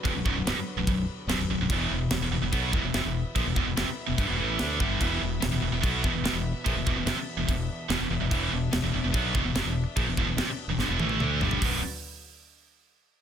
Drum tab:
CC |x---x---x---x---|x---x---x---x---|x---x---x---x---|x---x---x---x---|
HH |----------------|----------------|----------------|----------------|
SD |----o-------o---|----o-------o---|----o-------o---|----o-------o---|
T1 |----------------|----------------|----------------|----------------|
T2 |----------------|----------------|----------------|----------------|
FT |----------------|----------------|----------------|----------------|
BD |o-o-----o-------|o-------o-o-----|o-o-----o-----o-|o-------o-o-----|

CC |x---x---x---x---|x---x---x---x---|x---x-----------|----------------|
HH |----------------|----------------|----------------|o---------------|
SD |----o-------o---|----o-------o---|----o---o-------|----------------|
T1 |----------------|----------------|----------oo----|----------------|
T2 |----------------|----------------|------------o---|----------------|
FT |----------------|----------------|--------------oo|----------------|
BD |o-o-----o-------|o-------o-o-----|o-o-------------|o---------------|